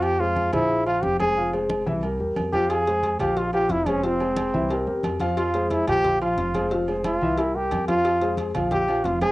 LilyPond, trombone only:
\new Staff \with { instrumentName = "Trombone" } { \time 4/4 \key f \minor \tempo 4 = 180 g'8 f'4 e'4 f'8 g'8 aes'8~ | aes'8 r2. g'8 | aes'4. g'8 f'8 g'8 e'8 des'8 | c'2. r4 |
f'4 e'8 g'4 f'4. | r4 f'4 e'8 g'4 f'8~ | f'4 r4 g'4 f'8 aes'8 | }